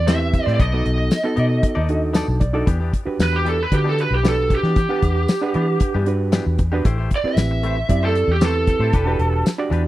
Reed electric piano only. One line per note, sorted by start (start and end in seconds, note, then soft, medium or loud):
0.07 0.60 C4 medium
0.07 0.60 E4 medium
0.07 0.60 G4 medium
0.07 0.60 B4 medium
0.73 1.16 B3 medium
0.73 1.16 D#4 medium
0.73 1.16 F#4 medium
0.73 1.16 A4 medium
1.24 1.78 B3 medium
1.24 1.78 D#4 medium
1.24 1.78 F#4 medium
1.24 1.79 A4 loud
1.89 2.43 D4 medium
1.89 2.43 D#4 medium
1.89 2.44 F#4 medium
1.89 2.44 A4 medium
2.15 2.40 A5 medium
2.40 2.65 D5 medium
2.53 2.67 D4 medium
2.53 2.67 D#4 medium
2.53 2.68 F#4 medium
2.53 2.68 A4 loud
3.06 3.60 D4 medium
3.06 3.60 F#4 medium
3.06 3.61 G4 medium
3.06 3.61 B4 medium
3.72 4.15 D4 medium
3.72 4.15 F#4 medium
3.72 4.15 G4 medium
3.72 4.16 B4 medium
4.24 4.78 D4 medium
4.24 4.78 F#4 medium
4.24 4.78 G4 medium
4.24 4.79 B4 medium
4.89 5.32 D4 medium
4.89 5.33 G4 medium
4.89 5.33 B4 medium
4.89 5.32 F#5 medium
5.42 5.95 D4 medium
5.42 5.96 G4 medium
5.42 5.96 B4 loud
5.42 5.96 F#5 medium
6.07 6.60 D4 medium
6.07 6.61 F#4 medium
6.07 6.61 G4 medium
6.07 6.61 B4 medium
6.73 6.85 D4 medium
6.73 6.85 F#4 medium
6.73 6.86 G4 medium
6.73 6.86 B4 loud
7.24 7.78 C4 medium
7.24 7.78 E4 medium
7.24 7.78 G4 medium
7.24 7.78 B4 medium
7.89 8.32 C4 medium
7.89 8.32 E4 medium
7.89 8.32 G4 medium
7.89 8.32 D5 medium
8.41 8.93 C4 medium
8.41 8.93 E4 medium
8.41 8.94 G4 medium
8.41 8.94 B4 medium
9.06 9.49 D4 medium
9.06 9.49 F#4 medium
9.06 9.49 G4 medium
9.06 9.50 B4 medium
9.58 9.88 D4 medium
9.58 9.88 F#4 medium
9.58 9.88 G4 medium
9.58 9.88 D5 loud